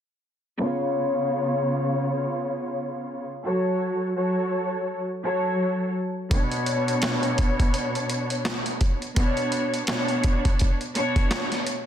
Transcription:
0.58 string section C#3 B3 F4 C#5
3.44 string section F#3 F#4 A4 C#5
4.15 string section F#3 F#4 A4 C#5
5.23 string section F#3 F#4 A4 C#5
6.30 string section B2 B3 D4 C#5, kick, closed hi-hat
6.52 closed hi-hat
6.66 closed hi-hat
6.88 closed hi-hat
7.02 snare, closed hi-hat
7.23 closed hi-hat
7.38 kick, closed hi-hat
7.60 kick, closed hi-hat
7.74 closed hi-hat
7.95 closed hi-hat
8.10 closed hi-hat
8.30 closed hi-hat
8.45 snare, closed hi-hat
8.66 closed hi-hat
8.81 kick, closed hi-hat
9.02 closed hi-hat
9.15 string section B2 B3 D4 C#5, kick, closed hi-hat
9.37 closed hi-hat
9.52 closed hi-hat
9.74 closed hi-hat
9.87 string section B2 B3 D4 C#5, snare, closed hi-hat
10.08 closed hi-hat
10.24 kick, closed hi-hat
10.45 kick, closed hi-hat
10.59 kick, closed hi-hat
10.81 closed hi-hat
10.95 string section B2 B3 D4 C#5, closed hi-hat
11.16 kick, closed hi-hat
11.31 snare, closed hi-hat
11.52 snare, closed hi-hat
11.67 closed hi-hat

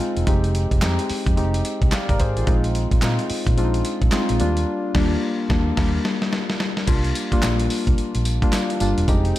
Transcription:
Already playing: synth keys G#3 C4 D#4 F4 G#4
0.17 fingered electric bass E1, closed hi-hat
0.27 fingered electric bass F1, synth keys G#3 C4 D#4 G4, kick, closed hi-hat
0.44 closed hi-hat
0.55 closed hi-hat
0.71 fingered electric bass F1, kick, closed hi-hat
0.82 fingered electric bass F2, synth keys G#3 C4 D#4 G4, snare, clap, closed hi-hat
0.99 closed hi-hat
1.10 muted fingered electric bass stroke, open hi-hat
1.26 fingered electric bass F2, kick, closed hi-hat
1.37 fingered electric bass F1, synth keys G#3 C4 D#4 G4, closed hi-hat
1.54 closed hi-hat
1.65 closed hi-hat
1.82 fingered electric bass C2, kick, closed hi-hat
1.92 synth keys D5 F5, snare, clap, closed hi-hat
2.09 fingered electric bass G#1, synth keys A#4 D5, kick, closed hi-hat
2.20 fingered electric bass G#1, synth keys G#4 C5, kick, closed hi-hat
2.37 fingered electric bass A1, synth keys F4 G#4, closed hi-hat
2.47 fingered electric bass A#1, synth keys G#3 C4 D#4 F4, kick, closed hi-hat
2.64 closed hi-hat
2.75 closed hi-hat
2.91 fingered electric bass A#1, kick, closed hi-hat
3.02 fingered electric bass A#2, synth keys G#3 C4 D#4 F4, snare, clap, closed hi-hat
3.19 closed hi-hat
3.30 muted fingered electric bass stroke, open hi-hat
3.47 fingered electric bass A#2, kick, closed hi-hat
3.57 fingered electric bass A#1, synth keys G#3 C4 D4 F4, closed hi-hat
3.64 synth keys D#4
3.74 closed hi-hat
3.85 closed hi-hat
4.02 fingered electric bass A#1, kick, closed hi-hat
4.12 synth keys G#3 C4 D#4 F4, snare, clap, closed hi-hat
4.29 fingered electric bass A#1, closed hi-hat
4.40 fingered electric bass D#2, synth keys G3 A#3 D4 F4, closed hi-hat
4.57 closed hi-hat
4.95 fingered electric bass D#2, synth keys G3 A#3 D4, kick, snare, crash
5.50 fingered electric bass D#2, synth keys G3 A#3 D4, kick, snare
5.77 fingered electric bass D#2, synth keys G3 A#3 D4, kick, snare, crash
6.05 snare
6.22 snare
6.33 snare
6.50 snare
6.60 snare
6.77 snare
6.87 fingered electric bass C2, synth keys G3 A#3 D4 F4, kick, closed hi-hat, crash, tambourine
7.04 closed hi-hat
7.15 closed hi-hat, tambourine
7.32 synth keys G3 A#3 D4 F4, muted fingered electric bass stroke, kick, closed hi-hat
7.42 fingered electric bass A#1, snare, clap, closed hi-hat, tambourine
7.59 closed hi-hat
7.70 open hi-hat, tambourine
7.87 fingered electric bass C2, kick, closed hi-hat
7.98 muted fingered electric bass stroke, closed hi-hat
8.15 fingered electric bass A#1, closed hi-hat
8.25 closed hi-hat, tambourine
8.42 synth keys G3 A#3 D4 F4, kick, closed hi-hat
8.52 snare, clap, closed hi-hat, tambourine
8.70 closed hi-hat
8.80 fingered electric bass G1, synth keys G3 A#3 D4 F4, closed hi-hat, tambourine
8.98 fingered electric bass E1, closed hi-hat
9.08 fingered electric bass F1, synth keys G#3 C4 D#4 G4, kick, closed hi-hat, tambourine
9.25 closed hi-hat
9.36 tambourine

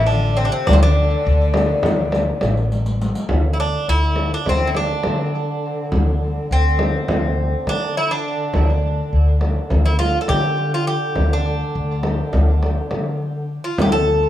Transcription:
Already playing: upright bass A1, cello section E3, ney E5
0.06 bouzouki D4, ney D5
0.11 cello section D3, riq
0.25 riq
0.37 bouzouki C4, ney C5, riq
0.42 cello section C3, bouzouki D4
0.52 bouzouki C4, ney C5
0.66 upright bass D2, cello section D3, bouzouki D4, ney D5, riq, frame drum
0.73 bouzouki C4
0.82 cello section D3, bouzouki D4, ney D5
1.27 upright bass D2, riq
1.43 riq
1.54 riq, frame drum
1.83 upright bass D2, riq, frame drum
2.12 riq, frame drum
2.41 upright bass A1, riq, frame drum
2.57 riq
2.72 riq
2.86 riq
3.01 riq
3.15 riq
3.29 upright bass D2, duduk D3, frame drum
3.53 bouzouki E4
3.60 bouzouki D4
3.88 upright bass D2, bouzouki E4
4.16 frame drum
4.34 bouzouki D4
4.46 upright bass D2, bouzouki C4, frame drum
4.67 bouzouki E4
4.75 bouzouki D4, frame drum
5.03 upright bass D3, frame drum
5.92 upright bass D2, frame drum
6.51 upright bass D2, bouzouki C4
6.79 frame drum
7.08 upright bass D2, frame drum
7.67 upright bass D3, bouzouki D4, frame drum
7.97 bouzouki E4
8.11 bouzouki D4
8.53 upright bass D2, duduk D3, frame drum
9.13 upright bass D2
9.41 frame drum
9.70 upright bass D2, frame drum
9.86 bouzouki E4
9.99 bouzouki F4, frame drum
10.21 bouzouki A4
10.28 upright bass D3, bouzouki G4, frame drum
10.74 bouzouki F4
10.87 bouzouki G4
11.15 upright bass D2, frame drum
11.33 bouzouki D4
11.75 upright bass D2
12.03 frame drum
12.33 upright bass D2, frame drum
12.63 frame drum
12.91 upright bass D3, frame drum
13.64 bouzouki F4
13.78 upright bass D2, duduk D3, bouzouki G4, riq, frame drum
13.92 bouzouki A4

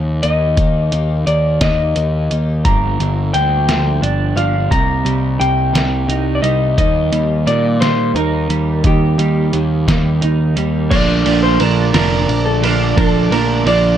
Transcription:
Already playing: picked electric bass D#2, clean electric guitar F5
0.22 picked electric bass D#2, clean electric guitar A#3 D#4 G4 D#5, closed hi-hat
0.57 picked electric bass D#2, clean electric guitar A#3 D#4 G4, kick, closed hi-hat
0.92 picked electric bass D#2, clean electric guitar A#3 D#4 G4, closed hi-hat
1.27 picked electric bass D#2, clean electric guitar A#3 D#4 G4 D5, closed hi-hat
1.61 picked electric bass D#2, clean electric guitar A#3 D#4 G4 D#5, kick, snare, closed hi-hat
1.96 picked electric bass D#2, closed hi-hat
2.31 picked electric bass D#2, clean electric guitar A#3 D#4 G4, closed hi-hat
2.65 picked electric bass G1, overdriven electric guitar G2, clean electric guitar F3 A#3 D4 G4 A#5, kick, closed hi-hat
2.99 picked electric bass G1, overdriven electric guitar D3, clean electric guitar F3 A#3 D4 G4, closed hi-hat
3.34 picked electric bass D2, overdriven electric guitar D3, clean electric guitar F3 A#3 D4 G4 G5, closed hi-hat
3.68 overdriven electric guitar F3, clean electric guitar F3 A#3 D4 G4, snare, closed hi-hat
4.02 picked electric bass G1, overdriven electric guitar D4, closed hi-hat
4.36 picked electric bass G1, overdriven electric guitar F3, clean electric guitar F3 A#3 D4 G4 F5, closed hi-hat
4.70 picked electric bass C2, overdriven electric guitar C3, clean electric guitar A#3 D#4 G4 A#5, kick, closed hi-hat
5.05 picked electric bass C2, overdriven electric guitar G3, clean electric guitar A#3 D#4 G4, closed hi-hat
5.39 picked electric bass C2, overdriven electric guitar C3, clean electric guitar A#3 D#4 G4 G5, closed hi-hat
5.74 picked electric bass C2, overdriven electric guitar G3, clean electric guitar A#3 D#4 G4, snare, closed hi-hat
6.08 picked electric bass C2, overdriven electric guitar D#4, closed hi-hat
6.35 clean electric guitar D5
6.42 picked electric bass C2, overdriven electric guitar G3, clean electric guitar A#3 D#4 G4 D#5, closed hi-hat
6.77 picked electric bass D#2, overdriven electric guitar D#3, clean electric guitar A#3 D#4 G4 D#5, kick, closed hi-hat
7.11 picked electric bass D#2, overdriven electric guitar G3, clean electric guitar A#3 D#4 G4, closed hi-hat
7.46 picked electric bass A#2, overdriven electric guitar D#3, clean electric guitar A#3 D#4 G4 D5, closed hi-hat
7.79 overdriven electric guitar G3, clean electric guitar A#3 D#4 G4 C5, snare, closed hi-hat
8.14 picked electric bass D#2, overdriven electric guitar D#4, clean electric guitar A#4, closed hi-hat
8.49 picked electric bass D#2, overdriven electric guitar G3, clean electric guitar A#3 D#4 G4, closed hi-hat
8.83 picked electric bass D#2, overdriven electric guitar D#3, clean electric guitar A#3 D#4 G4, kick, closed hi-hat
9.18 picked electric bass D#2, overdriven electric guitar G3, clean electric guitar A#3 D#4 G4, closed hi-hat
9.52 picked electric bass D#2, overdriven electric guitar D#3, clean electric guitar A#3 D#4 G4, closed hi-hat
9.87 picked electric bass D#2, overdriven electric guitar G3, clean electric guitar A#3 D#4 G4, kick, snare, closed hi-hat
10.21 picked electric bass D#2, overdriven electric guitar D#4, closed hi-hat
10.56 picked electric bass D#2, overdriven electric guitar G3, clean electric guitar A#3 D#4 G4, closed hi-hat
10.88 picked electric bass A#1, overdriven electric guitar A#2 D3 F3 A#3 D4, clean electric guitar F3 A3 D4 D5, analog synth pad D5 A5 D6, kick, crash, ride
10.92 clean electric guitar F4
11.25 picked electric bass A#1, overdriven electric guitar A#2 D3 F3 A#3 D4, clean electric guitar F3 A3 D4 F4, ride
11.43 clean electric guitar C5
11.59 picked electric bass A#1, overdriven electric guitar A#2 D3 F3 A#3 D4, clean electric guitar F3 A3 D4 F4 A#4, ride
11.93 picked electric bass F1, overdriven electric guitar A#2 D3 F3 D4, clean electric guitar F3 A3 D4 F4 A#4, snare, ride
12.28 picked electric bass A#1, ride
12.46 clean electric guitar A4
12.62 overdriven electric guitar A#2 D3 F3 A#3 D4, clean electric guitar F3 A3 D4 F4 A#4, ride
12.96 picked electric bass A#1, overdriven electric guitar A#2 D3 F3 A#3 D4, clean electric guitar F3 A3 D4 F4 A4, kick, ride
13.30 picked electric bass A#1, overdriven electric guitar A#2 D3 F3 A#3 D4, clean electric guitar F3 A3 D4 F4 A#4, ride
13.65 picked electric bass A#1, overdriven electric guitar A#2 D3 F3 A#3 D4, clean electric guitar F3 A3 D4 F4 D5, ride

